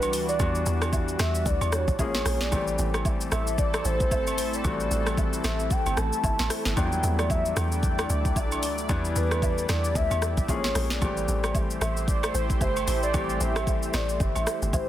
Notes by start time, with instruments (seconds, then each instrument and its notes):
Already playing: log drum bass B1, grand piano E3 G3 B3 D4 F#4, analog synth pad E3 G3 D4 F#4, soft synth lead B4
0.02 high agogo, shaker
0.13 log drum bass D2, open hi-hat, shaker
0.29 soft synth lead D5, shaker
0.39 log drum bass E2, grand piano E3 G3 B3 D4 F#4, kick, high agogo, shaker
0.55 shaker
0.66 log drum bass E2, shaker
0.82 cross-stick, high agogo, shaker
0.93 kick, low woodblock, shaker
1.08 shaker
1.19 log drum bass E2, soft synth lead E5, cross-stick, snare, high agogo, shaker
1.35 shaker
1.46 log drum bass D2, soft synth lead D5, kick, shaker
1.61 log drum bass E2, high agogo, shaker
1.72 soft synth lead C#5, cross-stick, shaker
1.88 log drum bass A1, kick, shaker
1.99 grand piano F3 G#3 A#3 C#4 G#4, soft synth lead C#5, kick, low woodblock, shaker
2.15 snare, high agogo, shaker
2.26 log drum bass A#1, cross-stick, open hi-hat, shaker
2.41 soft synth lead D5, snare, shaker
2.51 log drum bass A1, grand piano E3 G3 A3 C4 G4, analog synth pad A3 C4 E4 A4, kick, high agogo, shaker
2.67 shaker
2.78 log drum bass A1, shaker
2.94 cross-stick, high agogo, shaker
3.05 kick, low woodblock, shaker
3.21 shaker
3.32 log drum bass A1, soft synth lead E5, cross-stick, high agogo, shaker
3.47 shaker
3.58 soft synth lead D5, kick, shaker
3.74 cross-stick, high agogo, shaker
3.85 log drum bass A1, soft synth lead C5, shaker
4.00 kick, shaker
4.11 log drum bass G1, soft synth lead C5, kick, low woodblock, shaker
4.27 high agogo, shaker
4.38 log drum bass A1, open hi-hat, shaker
4.53 soft synth lead D5, shaker
4.64 log drum bass A1, grand piano E3 G3 A3 C4 F#4, kick, high agogo, shaker
4.80 shaker
4.91 log drum bass A1, shaker
5.07 cross-stick, high agogo, shaker
5.17 kick, low woodblock, shaker
5.33 shaker
5.44 log drum bass A1, soft synth lead E5, cross-stick, snare, high agogo, shaker
5.60 shaker
5.71 soft synth lead G5, kick, shaker
5.86 log drum bass G1, high agogo, shaker
5.97 log drum bass A1, soft synth lead A5, cross-stick, shaker
6.13 shaker
6.24 log drum bass G1, kick, low woodblock, shaker
6.39 log drum bass A1, snare, high agogo, shaker
6.50 cross-stick, open hi-hat, shaker
6.65 log drum bass G1, snare, shaker
6.76 log drum bass E2, grand piano E3 G3 B3 D4 F4, analog synth pad D4 D5, soft synth lead G5, kick, high agogo, shaker
6.85 grand piano F#3
6.92 shaker
7.03 log drum bass E2, shaker
7.19 soft synth lead D5, cross-stick, high agogo, shaker
7.30 soft synth lead E5, kick, low woodblock, shaker
7.46 shaker
7.57 log drum bass E2, soft synth lead G5, cross-stick, high agogo, shaker
7.72 shaker
7.83 kick, shaker
7.99 cross-stick, high agogo, shaker
8.10 log drum bass D2, shaker
8.25 kick, shaker
8.36 log drum bass B1, kick, low woodblock, shaker
8.52 high agogo, shaker
8.63 log drum bass D2, open hi-hat, shaker
8.78 shaker
8.89 log drum bass E2, grand piano E3 G3 B3 D4 E4, analog synth pad G4, kick, high agogo, shaker
9.05 shaker
9.16 log drum bass E2, soft synth lead B4, shaker
9.31 cross-stick, high agogo, shaker
9.42 kick, low woodblock, shaker
9.58 shaker
9.69 log drum bass E2, grand piano E3 G3 B3 D4 E4, soft synth lead D5, cross-stick, snare, high agogo, shaker
9.84 shaker
9.95 log drum bass D2, soft synth lead E5, kick, shaker
10.11 log drum bass E2, high agogo, shaker
10.22 cross-stick, shaker
10.37 log drum bass A1, soft synth lead E5, kick, shaker
10.48 grand piano F3 G#3 A#3 C#4 G#4, soft synth lead C#5, kick, low woodblock, shaker
10.64 snare, high agogo, shaker
10.75 log drum bass A#1, cross-stick, open hi-hat, shaker
10.90 soft synth lead D5, snare, shaker
11.01 log drum bass A1, grand piano E3 G3 A3 C4 G4, analog synth pad A3 E4 G4 C5, kick, high agogo, shaker
11.17 shaker
11.28 log drum bass A1, shaker
11.44 cross-stick, high agogo, shaker
11.55 kick, low woodblock, shaker
11.70 shaker
11.81 log drum bass A1, soft synth lead E5, cross-stick, high agogo, shaker
11.97 shaker
12.08 soft synth lead D5, kick, shaker
12.23 cross-stick, high agogo, shaker
12.35 log drum bass A1, soft synth lead C5, shaker
12.50 kick, shaker
12.61 log drum bass G1, soft synth lead C5, kick, low woodblock, shaker
12.76 high agogo, shaker
12.88 log drum bass A1, open hi-hat, shaker
13.03 soft synth lead D5, shaker
13.13 log drum bass A1, grand piano E3 G3 A3 C4 G4, kick, high agogo, shaker
13.29 shaker
13.41 log drum bass A1, soft synth lead E5, shaker
13.56 cross-stick, high agogo, shaker
13.67 kick, low woodblock, shaker
13.83 shaker
13.94 log drum bass A1, soft synth lead D5, cross-stick, snare, high agogo, shaker
14.09 shaker
14.20 log drum bass G1, soft synth lead E5, kick, shaker
14.35 log drum bass A1, high agogo, shaker
14.47 cross-stick, shaker
14.62 log drum bass G1, shaker
14.73 log drum bass A1, soft synth lead C5, kick, low woodblock, shaker